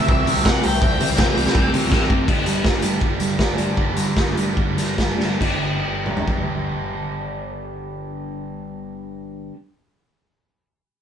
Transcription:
Already playing: E3 C4 D4 E4 D5 G5
0.07 C2 C3 G3 C4 E4 G4 E5, kick
0.25 C3 G3 C4 D4 E4, open hi-hat
0.36 C2
0.43 C3 E3 G3 C4 E4 F#5, kick, snare, clap
0.61 C2 G3 C4 D4 E4 G5, open hi-hat
0.80 C2 C3 E3 G3 C4 E4, kick
0.98 C3 G3 C4 E4, open hi-hat
1.10 C2
1.17 C3 E3 G3 C4 E4, kick, snare, clap
1.35 C2 C3 G3 C4 D4 E4, open hi-hat
1.47 C3, snare
1.53 C2 C3 G3 C4 E4 G4, kick
1.72 C3 G3 C4 D4 E4, open hi-hat
1.84 C2
1.90 A1 C3 E3 G3 C4 E4, kick, snare, clap
2.09 G1 G3 C4 D4 E4, kick
2.26 G1 G2 D3 G3 B3 D4, kick, crash
2.46 G2, closed hi-hat
2.65 G1, kick, snare
2.82 G2 G3 B3 D4, closed hi-hat
3.01 G1, kick
3.20 G2, closed hi-hat
3.38 G1 G3 B3 D4, kick, snare
3.57 G2 D3 G3 B3 D4, closed hi-hat
3.76 G1 G2 D3 G3 B3 D4, kick
3.80 D4
3.97 G2, closed hi-hat
4.17 G1, kick, snare
4.36 G2 G3 B3 D4, closed hi-hat
4.57 G1, kick
4.77 G2, snare, closed hi-hat
4.98 G1 G3 B3 D4, kick, snare
5.18 G2 D3 G3 B3 D4, snare
5.22 G2
5.39 G1 G2 D3 G3 B3 D4, kick, crash
5.43 D4 G4
6.06 mid tom
6.17 floor tom
6.28 kick

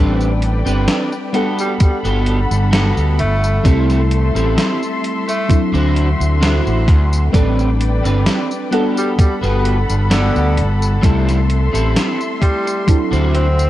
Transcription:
Already playing: A1 G3 C4 D4 G4 A4 B4 D5 G5
0.21 tambourine
0.42 closed hi-hat
0.66 G1 C4 D4 G4 B4, tambourine
0.88 snare, closed hi-hat, tambourine
1.12 tambourine
1.33 G3 B3 D4 F#4 G4 A4 F#5 B5, closed hi-hat
1.59 G3, tambourine
1.80 G3, muted fingered electric bass stroke, kick, closed hi-hat, tambourine
2.05 G1 B3 F#4 G4 A4, tambourine
2.26 closed hi-hat
2.51 G1, tambourine
2.72 B3 F#4 G4 A4, snare, closed hi-hat, tambourine
2.97 D2, tambourine
3.19 G1 A3, closed hi-hat
3.44 tambourine
3.63 C2 G3 A3 C4 E4 G4 A4 E5 C6, kick, closed hi-hat, tambourine
3.90 snare, tambourine
4.11 closed hi-hat
4.35 A1 C4 E4 G4 A4, tambourine
4.58 snare, closed hi-hat, tambourine
4.83 tambourine
5.04 closed hi-hat
5.28 A3, muted clean electric guitar stroke, tambourine
5.48 F#3 C4 D4 E4 F#4 A4, muted clean electric guitar stroke, kick, closed hi-hat, tambourine
5.73 D2 D4 E4 F#4 C5, tambourine
5.96 closed hi-hat
6.20 D2, tambourine
6.41 D4 E4 F#4 C5, snare, closed hi-hat, tambourine
6.67 A1, tambourine
6.88 D2, kick, closed hi-hat
7.13 tambourine
7.32 A1 G3 C4 D4 G4 A4 B4 D5 G5, kick, closed hi-hat, tambourine
7.59 tambourine
7.81 closed hi-hat
8.04 G1 C4 D4 G4 B4, tambourine
8.26 snare, closed hi-hat, tambourine
8.51 tambourine
8.71 G3 B3 D4 F#4 G4 A4 F#5 B5, closed hi-hat
8.97 G3, tambourine
9.19 G3, muted fingered electric bass stroke, kick, closed hi-hat, tambourine
9.42 G1 B3 F#4 G4 B4, tambourine
9.65 closed hi-hat
9.89 G1, tambourine
10.10 D3 B3 F#4 G4 A4, snare, closed hi-hat, tambourine
10.36 D2, tambourine
10.57 G1, closed hi-hat
10.82 tambourine
11.02 C2 G3 A3 C4 E4 G4 A4 E5 C6, kick, closed hi-hat, tambourine
11.29 snare, closed hi-hat, tambourine
11.50 closed hi-hat
11.73 A1 C4 E4 G4 A4, tambourine
11.97 snare, closed hi-hat, tambourine
12.21 tambourine
12.42 G3, kick, closed hi-hat
12.66 muted clean electric guitar stroke, tambourine
12.86 F#3 C4 D4 E4 F#4 A4 E5, muted clean electric guitar stroke, kick, closed hi-hat, tambourine
13.12 D2 D4 E4 F#4 C5, tambourine
13.34 C4, closed hi-hat
13.59 tambourine

